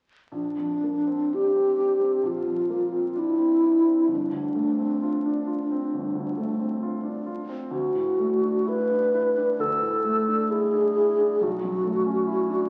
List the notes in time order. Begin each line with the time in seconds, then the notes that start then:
0.32 A#1 D4
0.57 F2
0.83 A#3
1.07 C4
1.33 D4 G4
1.55 C4
1.77 D4
2.00 C4
2.23 A#1
2.27 F4
2.47 F2
2.70 A#3
2.92 C4
3.16 D4 E4
3.38 C4
3.62 D4
3.84 C4
4.08 G1
4.12 D4
4.32 D2
4.55 A3
4.79 C4
5.02 F4
5.26 D4
5.47 F4
5.71 C4
5.94 G1
6.15 D2
6.37 A3
6.59 C4
6.83 F4
7.03 D4
7.26 F4
7.49 C4
7.71 D2 F#4
7.95 A2
8.19 A3
8.42 D4
8.67 E4 B4
8.91 D4
9.14 E4
9.38 D4
9.59 D2 A4
9.81 A2
10.04 A3
10.27 D4
10.51 E4 G#4
10.73 D4
10.96 E4
11.19 D4
11.41 B1 F#4
11.63 F#2
11.84 A3
12.06 C#4
12.27 E4
12.49 D4